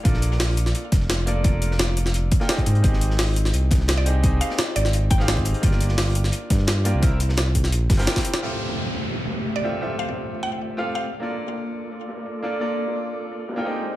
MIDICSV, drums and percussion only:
0, 0, Header, 1, 2, 480
1, 0, Start_track
1, 0, Tempo, 348837
1, 69, Time_signature, 4, 2, 24, 8
1, 19210, End_track
2, 0, Start_track
2, 0, Title_t, "Drums"
2, 69, Note_on_c, 9, 42, 77
2, 70, Note_on_c, 9, 36, 118
2, 188, Note_on_c, 9, 38, 41
2, 207, Note_off_c, 9, 36, 0
2, 207, Note_off_c, 9, 42, 0
2, 304, Note_on_c, 9, 42, 66
2, 307, Note_off_c, 9, 42, 0
2, 307, Note_on_c, 9, 42, 80
2, 326, Note_off_c, 9, 38, 0
2, 434, Note_on_c, 9, 38, 49
2, 445, Note_off_c, 9, 42, 0
2, 547, Note_off_c, 9, 38, 0
2, 547, Note_on_c, 9, 38, 107
2, 549, Note_off_c, 9, 38, 0
2, 549, Note_on_c, 9, 38, 110
2, 549, Note_on_c, 9, 42, 70
2, 550, Note_on_c, 9, 46, 78
2, 687, Note_off_c, 9, 38, 0
2, 687, Note_off_c, 9, 42, 0
2, 688, Note_off_c, 9, 46, 0
2, 786, Note_on_c, 9, 42, 63
2, 788, Note_off_c, 9, 42, 0
2, 788, Note_on_c, 9, 42, 86
2, 911, Note_on_c, 9, 38, 34
2, 925, Note_off_c, 9, 42, 0
2, 1029, Note_on_c, 9, 42, 67
2, 1049, Note_off_c, 9, 38, 0
2, 1167, Note_off_c, 9, 42, 0
2, 1264, Note_on_c, 9, 38, 52
2, 1266, Note_on_c, 9, 42, 88
2, 1268, Note_on_c, 9, 36, 110
2, 1274, Note_off_c, 9, 42, 0
2, 1274, Note_on_c, 9, 42, 71
2, 1380, Note_off_c, 9, 38, 0
2, 1380, Note_on_c, 9, 38, 37
2, 1406, Note_off_c, 9, 36, 0
2, 1412, Note_off_c, 9, 42, 0
2, 1508, Note_off_c, 9, 38, 0
2, 1508, Note_on_c, 9, 38, 113
2, 1508, Note_on_c, 9, 42, 69
2, 1512, Note_off_c, 9, 38, 0
2, 1512, Note_on_c, 9, 38, 114
2, 1646, Note_off_c, 9, 42, 0
2, 1650, Note_off_c, 9, 38, 0
2, 1748, Note_on_c, 9, 42, 86
2, 1749, Note_off_c, 9, 42, 0
2, 1749, Note_on_c, 9, 42, 60
2, 1887, Note_off_c, 9, 42, 0
2, 1984, Note_on_c, 9, 42, 87
2, 1987, Note_off_c, 9, 42, 0
2, 1987, Note_on_c, 9, 42, 70
2, 1988, Note_on_c, 9, 36, 114
2, 2125, Note_off_c, 9, 42, 0
2, 2126, Note_off_c, 9, 36, 0
2, 2225, Note_on_c, 9, 42, 65
2, 2227, Note_off_c, 9, 42, 0
2, 2227, Note_on_c, 9, 42, 82
2, 2358, Note_on_c, 9, 38, 59
2, 2365, Note_off_c, 9, 42, 0
2, 2463, Note_on_c, 9, 42, 84
2, 2464, Note_off_c, 9, 38, 0
2, 2464, Note_on_c, 9, 38, 114
2, 2469, Note_off_c, 9, 38, 0
2, 2469, Note_off_c, 9, 42, 0
2, 2469, Note_on_c, 9, 38, 116
2, 2469, Note_on_c, 9, 42, 69
2, 2607, Note_off_c, 9, 38, 0
2, 2607, Note_off_c, 9, 42, 0
2, 2709, Note_on_c, 9, 42, 85
2, 2715, Note_off_c, 9, 42, 0
2, 2715, Note_on_c, 9, 42, 60
2, 2832, Note_on_c, 9, 38, 36
2, 2853, Note_off_c, 9, 42, 0
2, 2946, Note_on_c, 9, 42, 70
2, 2956, Note_off_c, 9, 42, 0
2, 2956, Note_on_c, 9, 42, 78
2, 2969, Note_off_c, 9, 38, 0
2, 3094, Note_off_c, 9, 42, 0
2, 3186, Note_on_c, 9, 42, 83
2, 3188, Note_on_c, 9, 36, 107
2, 3304, Note_on_c, 9, 38, 41
2, 3324, Note_off_c, 9, 42, 0
2, 3326, Note_off_c, 9, 36, 0
2, 3427, Note_off_c, 9, 38, 0
2, 3427, Note_on_c, 9, 38, 115
2, 3427, Note_on_c, 9, 42, 71
2, 3428, Note_off_c, 9, 38, 0
2, 3428, Note_on_c, 9, 38, 99
2, 3430, Note_off_c, 9, 42, 0
2, 3430, Note_on_c, 9, 42, 83
2, 3551, Note_on_c, 9, 36, 58
2, 3555, Note_off_c, 9, 42, 0
2, 3555, Note_on_c, 9, 42, 44
2, 3565, Note_off_c, 9, 38, 0
2, 3663, Note_off_c, 9, 42, 0
2, 3663, Note_on_c, 9, 42, 60
2, 3666, Note_off_c, 9, 42, 0
2, 3666, Note_on_c, 9, 42, 81
2, 3689, Note_off_c, 9, 36, 0
2, 3786, Note_off_c, 9, 42, 0
2, 3786, Note_on_c, 9, 42, 42
2, 3905, Note_off_c, 9, 42, 0
2, 3905, Note_on_c, 9, 42, 85
2, 3906, Note_off_c, 9, 42, 0
2, 3906, Note_on_c, 9, 42, 71
2, 3909, Note_on_c, 9, 36, 107
2, 4036, Note_on_c, 9, 38, 42
2, 4043, Note_off_c, 9, 42, 0
2, 4046, Note_off_c, 9, 36, 0
2, 4147, Note_on_c, 9, 42, 84
2, 4155, Note_off_c, 9, 42, 0
2, 4155, Note_on_c, 9, 42, 57
2, 4173, Note_off_c, 9, 38, 0
2, 4270, Note_on_c, 9, 38, 49
2, 4293, Note_off_c, 9, 42, 0
2, 4380, Note_on_c, 9, 46, 83
2, 4386, Note_off_c, 9, 38, 0
2, 4386, Note_on_c, 9, 38, 100
2, 4388, Note_off_c, 9, 38, 0
2, 4388, Note_on_c, 9, 38, 108
2, 4388, Note_on_c, 9, 42, 70
2, 4518, Note_off_c, 9, 46, 0
2, 4525, Note_off_c, 9, 38, 0
2, 4525, Note_off_c, 9, 42, 0
2, 4625, Note_on_c, 9, 42, 57
2, 4629, Note_off_c, 9, 42, 0
2, 4629, Note_on_c, 9, 42, 83
2, 4752, Note_on_c, 9, 38, 35
2, 4766, Note_off_c, 9, 42, 0
2, 4863, Note_on_c, 9, 42, 77
2, 4870, Note_off_c, 9, 42, 0
2, 4870, Note_on_c, 9, 42, 70
2, 4889, Note_off_c, 9, 38, 0
2, 5007, Note_off_c, 9, 42, 0
2, 5101, Note_on_c, 9, 38, 53
2, 5101, Note_on_c, 9, 42, 71
2, 5109, Note_on_c, 9, 36, 100
2, 5110, Note_off_c, 9, 42, 0
2, 5110, Note_on_c, 9, 42, 88
2, 5234, Note_off_c, 9, 38, 0
2, 5234, Note_on_c, 9, 38, 39
2, 5246, Note_off_c, 9, 36, 0
2, 5247, Note_off_c, 9, 42, 0
2, 5338, Note_on_c, 9, 42, 80
2, 5341, Note_off_c, 9, 38, 0
2, 5341, Note_on_c, 9, 38, 120
2, 5350, Note_off_c, 9, 38, 0
2, 5350, Note_off_c, 9, 42, 0
2, 5350, Note_on_c, 9, 38, 109
2, 5350, Note_on_c, 9, 42, 72
2, 5487, Note_off_c, 9, 38, 0
2, 5487, Note_off_c, 9, 42, 0
2, 5586, Note_on_c, 9, 42, 69
2, 5589, Note_off_c, 9, 42, 0
2, 5589, Note_on_c, 9, 42, 83
2, 5727, Note_off_c, 9, 42, 0
2, 5826, Note_on_c, 9, 42, 90
2, 5829, Note_off_c, 9, 42, 0
2, 5829, Note_on_c, 9, 36, 107
2, 5829, Note_on_c, 9, 42, 74
2, 5967, Note_off_c, 9, 36, 0
2, 5967, Note_off_c, 9, 42, 0
2, 6066, Note_on_c, 9, 42, 58
2, 6068, Note_off_c, 9, 42, 0
2, 6068, Note_on_c, 9, 42, 88
2, 6195, Note_on_c, 9, 38, 50
2, 6205, Note_off_c, 9, 42, 0
2, 6298, Note_off_c, 9, 38, 0
2, 6298, Note_on_c, 9, 38, 106
2, 6303, Note_on_c, 9, 42, 76
2, 6310, Note_off_c, 9, 38, 0
2, 6310, Note_off_c, 9, 42, 0
2, 6310, Note_on_c, 9, 38, 112
2, 6310, Note_on_c, 9, 42, 72
2, 6448, Note_off_c, 9, 38, 0
2, 6448, Note_off_c, 9, 42, 0
2, 6549, Note_on_c, 9, 42, 93
2, 6551, Note_off_c, 9, 42, 0
2, 6551, Note_on_c, 9, 42, 64
2, 6673, Note_on_c, 9, 38, 33
2, 6689, Note_off_c, 9, 42, 0
2, 6788, Note_on_c, 9, 42, 76
2, 6789, Note_off_c, 9, 42, 0
2, 6789, Note_on_c, 9, 42, 77
2, 6811, Note_off_c, 9, 38, 0
2, 6926, Note_off_c, 9, 42, 0
2, 7023, Note_on_c, 9, 42, 74
2, 7028, Note_off_c, 9, 42, 0
2, 7028, Note_on_c, 9, 42, 90
2, 7029, Note_on_c, 9, 36, 104
2, 7151, Note_on_c, 9, 38, 49
2, 7166, Note_off_c, 9, 42, 0
2, 7167, Note_off_c, 9, 36, 0
2, 7268, Note_off_c, 9, 38, 0
2, 7268, Note_on_c, 9, 38, 110
2, 7268, Note_on_c, 9, 42, 74
2, 7269, Note_off_c, 9, 38, 0
2, 7269, Note_on_c, 9, 38, 110
2, 7272, Note_off_c, 9, 42, 0
2, 7272, Note_on_c, 9, 42, 82
2, 7382, Note_off_c, 9, 42, 0
2, 7382, Note_on_c, 9, 42, 40
2, 7392, Note_on_c, 9, 36, 54
2, 7407, Note_off_c, 9, 38, 0
2, 7501, Note_off_c, 9, 42, 0
2, 7501, Note_on_c, 9, 42, 66
2, 7507, Note_off_c, 9, 42, 0
2, 7507, Note_on_c, 9, 42, 85
2, 7529, Note_off_c, 9, 36, 0
2, 7626, Note_off_c, 9, 42, 0
2, 7626, Note_on_c, 9, 42, 45
2, 7747, Note_off_c, 9, 42, 0
2, 7747, Note_on_c, 9, 42, 77
2, 7748, Note_on_c, 9, 36, 107
2, 7751, Note_off_c, 9, 42, 0
2, 7751, Note_on_c, 9, 42, 88
2, 7864, Note_on_c, 9, 38, 44
2, 7886, Note_off_c, 9, 36, 0
2, 7888, Note_off_c, 9, 42, 0
2, 7988, Note_on_c, 9, 42, 88
2, 8002, Note_off_c, 9, 38, 0
2, 8006, Note_off_c, 9, 42, 0
2, 8006, Note_on_c, 9, 42, 63
2, 8099, Note_on_c, 9, 38, 49
2, 8143, Note_off_c, 9, 42, 0
2, 8227, Note_off_c, 9, 38, 0
2, 8227, Note_on_c, 9, 38, 105
2, 8227, Note_on_c, 9, 42, 75
2, 8227, Note_on_c, 9, 46, 74
2, 8235, Note_off_c, 9, 38, 0
2, 8235, Note_on_c, 9, 38, 110
2, 8364, Note_off_c, 9, 42, 0
2, 8364, Note_off_c, 9, 46, 0
2, 8372, Note_off_c, 9, 38, 0
2, 8466, Note_on_c, 9, 42, 95
2, 8474, Note_off_c, 9, 42, 0
2, 8474, Note_on_c, 9, 42, 60
2, 8591, Note_on_c, 9, 38, 35
2, 8612, Note_off_c, 9, 42, 0
2, 8699, Note_on_c, 9, 42, 80
2, 8708, Note_off_c, 9, 42, 0
2, 8708, Note_on_c, 9, 42, 78
2, 8728, Note_off_c, 9, 38, 0
2, 8846, Note_off_c, 9, 42, 0
2, 8947, Note_on_c, 9, 42, 94
2, 8949, Note_on_c, 9, 36, 100
2, 8955, Note_on_c, 9, 38, 46
2, 8959, Note_off_c, 9, 42, 0
2, 8959, Note_on_c, 9, 42, 62
2, 9056, Note_off_c, 9, 38, 0
2, 9056, Note_on_c, 9, 38, 37
2, 9086, Note_off_c, 9, 36, 0
2, 9097, Note_off_c, 9, 42, 0
2, 9183, Note_off_c, 9, 38, 0
2, 9183, Note_on_c, 9, 38, 104
2, 9184, Note_on_c, 9, 42, 77
2, 9189, Note_off_c, 9, 38, 0
2, 9189, Note_off_c, 9, 42, 0
2, 9189, Note_on_c, 9, 38, 104
2, 9189, Note_on_c, 9, 42, 77
2, 9326, Note_off_c, 9, 38, 0
2, 9326, Note_off_c, 9, 42, 0
2, 9426, Note_on_c, 9, 42, 59
2, 9428, Note_off_c, 9, 42, 0
2, 9428, Note_on_c, 9, 42, 94
2, 9566, Note_off_c, 9, 42, 0
2, 9667, Note_on_c, 9, 42, 80
2, 9669, Note_on_c, 9, 36, 112
2, 9674, Note_off_c, 9, 42, 0
2, 9674, Note_on_c, 9, 42, 89
2, 9806, Note_off_c, 9, 36, 0
2, 9811, Note_off_c, 9, 42, 0
2, 9908, Note_on_c, 9, 42, 94
2, 10030, Note_on_c, 9, 38, 60
2, 10046, Note_off_c, 9, 42, 0
2, 10142, Note_on_c, 9, 42, 83
2, 10149, Note_off_c, 9, 38, 0
2, 10149, Note_off_c, 9, 42, 0
2, 10149, Note_on_c, 9, 38, 111
2, 10149, Note_on_c, 9, 42, 79
2, 10154, Note_off_c, 9, 38, 0
2, 10154, Note_on_c, 9, 38, 114
2, 10287, Note_off_c, 9, 42, 0
2, 10291, Note_off_c, 9, 38, 0
2, 10389, Note_on_c, 9, 36, 57
2, 10389, Note_on_c, 9, 42, 97
2, 10392, Note_off_c, 9, 42, 0
2, 10392, Note_on_c, 9, 42, 61
2, 10512, Note_on_c, 9, 38, 36
2, 10526, Note_off_c, 9, 36, 0
2, 10529, Note_off_c, 9, 42, 0
2, 10628, Note_on_c, 9, 42, 92
2, 10630, Note_off_c, 9, 42, 0
2, 10630, Note_on_c, 9, 42, 78
2, 10650, Note_off_c, 9, 38, 0
2, 10767, Note_off_c, 9, 42, 0
2, 10865, Note_on_c, 9, 38, 108
2, 10866, Note_on_c, 9, 46, 65
2, 10868, Note_on_c, 9, 42, 96
2, 10869, Note_on_c, 9, 36, 102
2, 10991, Note_off_c, 9, 38, 0
2, 10991, Note_on_c, 9, 38, 100
2, 10994, Note_off_c, 9, 46, 0
2, 10994, Note_on_c, 9, 46, 66
2, 11006, Note_off_c, 9, 42, 0
2, 11007, Note_off_c, 9, 36, 0
2, 11104, Note_off_c, 9, 38, 0
2, 11104, Note_on_c, 9, 38, 96
2, 11106, Note_off_c, 9, 46, 0
2, 11106, Note_on_c, 9, 46, 74
2, 11108, Note_off_c, 9, 38, 0
2, 11108, Note_on_c, 9, 38, 106
2, 11108, Note_on_c, 9, 42, 81
2, 11231, Note_off_c, 9, 38, 0
2, 11231, Note_on_c, 9, 38, 68
2, 11232, Note_on_c, 9, 36, 54
2, 11234, Note_off_c, 9, 38, 0
2, 11234, Note_on_c, 9, 38, 94
2, 11235, Note_off_c, 9, 46, 0
2, 11235, Note_on_c, 9, 46, 62
2, 11246, Note_off_c, 9, 42, 0
2, 11348, Note_on_c, 9, 42, 92
2, 11353, Note_off_c, 9, 42, 0
2, 11353, Note_on_c, 9, 42, 59
2, 11370, Note_off_c, 9, 36, 0
2, 11371, Note_off_c, 9, 38, 0
2, 11373, Note_off_c, 9, 46, 0
2, 11470, Note_off_c, 9, 42, 0
2, 11470, Note_on_c, 9, 38, 94
2, 11470, Note_on_c, 9, 42, 48
2, 11592, Note_off_c, 9, 42, 0
2, 11592, Note_on_c, 9, 42, 76
2, 11607, Note_off_c, 9, 38, 0
2, 11714, Note_on_c, 9, 38, 38
2, 11730, Note_off_c, 9, 42, 0
2, 11824, Note_on_c, 9, 42, 63
2, 11851, Note_off_c, 9, 38, 0
2, 11953, Note_on_c, 9, 38, 45
2, 11962, Note_off_c, 9, 42, 0
2, 12091, Note_off_c, 9, 38, 0
2, 12313, Note_on_c, 9, 42, 58
2, 12450, Note_off_c, 9, 42, 0
2, 12550, Note_on_c, 9, 42, 70
2, 12688, Note_off_c, 9, 42, 0
2, 12782, Note_on_c, 9, 42, 64
2, 12790, Note_on_c, 9, 38, 47
2, 12903, Note_off_c, 9, 38, 0
2, 12903, Note_on_c, 9, 38, 34
2, 12919, Note_off_c, 9, 42, 0
2, 13034, Note_on_c, 9, 42, 71
2, 13040, Note_off_c, 9, 38, 0
2, 13172, Note_off_c, 9, 42, 0
2, 13507, Note_on_c, 9, 42, 76
2, 13644, Note_off_c, 9, 42, 0
2, 13744, Note_on_c, 9, 42, 55
2, 13881, Note_off_c, 9, 42, 0
2, 13882, Note_on_c, 9, 38, 49
2, 13986, Note_on_c, 9, 42, 74
2, 14019, Note_off_c, 9, 38, 0
2, 14124, Note_off_c, 9, 42, 0
2, 14224, Note_on_c, 9, 42, 58
2, 14362, Note_off_c, 9, 42, 0
2, 14459, Note_on_c, 9, 42, 80
2, 14597, Note_off_c, 9, 42, 0
2, 14712, Note_on_c, 9, 42, 64
2, 14844, Note_on_c, 9, 38, 41
2, 14850, Note_off_c, 9, 42, 0
2, 14963, Note_on_c, 9, 42, 73
2, 14981, Note_off_c, 9, 38, 0
2, 15101, Note_off_c, 9, 42, 0
2, 15184, Note_on_c, 9, 42, 61
2, 15307, Note_off_c, 9, 42, 0
2, 15307, Note_on_c, 9, 42, 41
2, 15423, Note_off_c, 9, 42, 0
2, 15423, Note_on_c, 9, 42, 72
2, 15543, Note_on_c, 9, 38, 36
2, 15561, Note_off_c, 9, 42, 0
2, 15671, Note_on_c, 9, 42, 62
2, 15681, Note_off_c, 9, 38, 0
2, 15786, Note_on_c, 9, 38, 46
2, 15808, Note_off_c, 9, 42, 0
2, 15920, Note_on_c, 9, 46, 77
2, 15923, Note_off_c, 9, 38, 0
2, 16057, Note_off_c, 9, 46, 0
2, 16134, Note_on_c, 9, 42, 60
2, 16272, Note_off_c, 9, 42, 0
2, 16390, Note_on_c, 9, 42, 73
2, 16528, Note_off_c, 9, 42, 0
2, 16619, Note_on_c, 9, 42, 65
2, 16632, Note_on_c, 9, 38, 41
2, 16744, Note_off_c, 9, 38, 0
2, 16744, Note_on_c, 9, 38, 36
2, 16756, Note_off_c, 9, 42, 0
2, 16867, Note_on_c, 9, 42, 76
2, 16882, Note_off_c, 9, 38, 0
2, 17005, Note_off_c, 9, 42, 0
2, 17109, Note_on_c, 9, 42, 65
2, 17247, Note_off_c, 9, 42, 0
2, 17349, Note_on_c, 9, 42, 74
2, 17486, Note_off_c, 9, 42, 0
2, 17580, Note_on_c, 9, 42, 53
2, 17712, Note_on_c, 9, 38, 45
2, 17718, Note_off_c, 9, 42, 0
2, 17826, Note_on_c, 9, 42, 81
2, 17849, Note_off_c, 9, 38, 0
2, 17964, Note_off_c, 9, 42, 0
2, 18071, Note_on_c, 9, 42, 56
2, 18208, Note_off_c, 9, 42, 0
2, 18314, Note_on_c, 9, 42, 81
2, 18451, Note_off_c, 9, 42, 0
2, 18552, Note_on_c, 9, 46, 50
2, 18559, Note_on_c, 9, 38, 75
2, 18605, Note_off_c, 9, 46, 0
2, 18605, Note_on_c, 9, 46, 52
2, 18613, Note_off_c, 9, 38, 0
2, 18613, Note_on_c, 9, 38, 79
2, 18667, Note_off_c, 9, 46, 0
2, 18667, Note_on_c, 9, 46, 53
2, 18676, Note_off_c, 9, 38, 0
2, 18676, Note_on_c, 9, 38, 68
2, 18727, Note_off_c, 9, 38, 0
2, 18727, Note_on_c, 9, 38, 81
2, 18729, Note_off_c, 9, 46, 0
2, 18729, Note_on_c, 9, 46, 57
2, 18786, Note_on_c, 9, 42, 73
2, 18864, Note_off_c, 9, 38, 0
2, 18867, Note_off_c, 9, 46, 0
2, 18920, Note_off_c, 9, 42, 0
2, 18920, Note_on_c, 9, 42, 42
2, 19025, Note_off_c, 9, 42, 0
2, 19025, Note_on_c, 9, 42, 57
2, 19154, Note_off_c, 9, 42, 0
2, 19154, Note_on_c, 9, 42, 40
2, 19210, Note_off_c, 9, 42, 0
2, 19210, End_track
0, 0, End_of_file